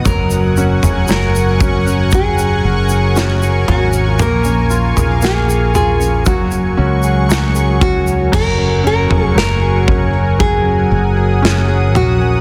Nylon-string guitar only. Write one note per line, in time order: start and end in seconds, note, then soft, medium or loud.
0.07 1.10 A#4 loud
1.12 2.14 A#4 medium
2.14 3.68 G#4 medium
3.68 4.07 F#4 medium
4.07 4.21 F4 medium
4.22 5.20 A#4 loud
5.24 5.74 G#4 medium
5.76 6.26 G#4 medium
6.27 7.78 F#4 medium
7.82 8.34 F#4 medium
8.34 8.86 A#4 loud
8.87 9.34 A#4 loud
9.38 10.40 A#4 loud
10.40 11.96 G#4 loud
11.96 12.41 F#4 medium